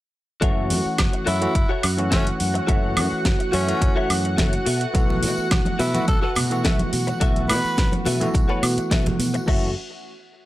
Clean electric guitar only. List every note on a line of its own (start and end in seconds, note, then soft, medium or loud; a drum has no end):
0.41 0.77 F#4 loud
0.41 0.77 A4 loud
0.41 0.78 C#5 loud
0.41 0.78 E5 loud
1.13 muted clean electric guitar stroke soft
1.26 1.48 F#4 medium
1.26 1.48 A4 medium
1.26 1.48 C#5 medium
1.26 1.49 E5 medium
1.69 1.83 F#4 loud
1.69 1.83 A4 medium
1.69 1.84 C#5 medium
1.69 1.84 E5 loud
1.98 muted clean electric guitar stroke soft
2.11 2.26 F#4 medium
2.11 2.26 A4 medium
2.11 2.27 C#5 medium
2.11 2.27 E5 medium
2.39 muted clean electric guitar stroke soft
2.54 muted clean electric guitar stroke medium
2.67 3.04 F#4 loud
2.67 3.04 A4 medium
2.67 3.04 C#5 loud
2.67 3.04 E5 loud
3.39 muted clean electric guitar stroke soft
3.52 3.74 F#4 medium
3.52 3.74 A4 medium
3.52 3.75 C#5 medium
3.52 3.75 E5 loud
3.96 4.09 F#4 loud
3.96 4.10 A4 medium
3.96 4.10 C#5 loud
3.96 4.10 E5 loud
4.24 muted clean electric guitar stroke soft
4.37 4.53 F#4 medium
4.37 4.53 A4 medium
4.37 4.53 C#5 medium
4.37 4.53 E5 loud
4.66 5.46 F#4 loud
4.66 5.46 A4 medium
4.66 5.46 B4 medium
4.66 5.46 E5 loud
5.66 muted clean electric guitar stroke soft
5.79 6.01 F#4 medium
5.79 6.01 A4 medium
5.79 6.01 B4 medium
5.79 6.02 E5 medium
6.22 6.36 F#4 loud
6.22 6.36 A4 loud
6.22 6.36 B4 loud
6.22 6.37 F#5 loud
6.51 muted clean electric guitar stroke soft
6.64 6.79 F#4 medium
6.64 6.80 A4 medium
6.64 6.80 B4 medium
6.64 6.80 E5 loud
6.92 muted clean electric guitar stroke soft
7.07 muted clean electric guitar stroke medium
7.20 7.56 F#4 loud
7.20 7.57 A4 medium
7.20 7.57 B4 medium
7.20 7.57 E5 loud
7.92 muted clean electric guitar stroke soft
8.06 8.27 F#4 medium
8.06 8.28 A4 medium
8.06 8.28 B4 medium
8.06 8.28 E5 loud
8.49 8.62 F#4 loud
8.49 8.62 A4 medium
8.49 8.63 B4 loud
8.49 8.63 C#5 loud
8.77 muted clean electric guitar stroke soft
8.91 9.06 F#4 medium
8.91 9.06 A4 medium
8.91 9.06 B4 medium
8.91 9.06 E5 loud
9.19 muted clean electric guitar stroke soft
9.34 muted clean electric guitar stroke medium
9.48 9.74 F#4 medium
9.48 9.74 A4 medium
9.48 9.74 E5 medium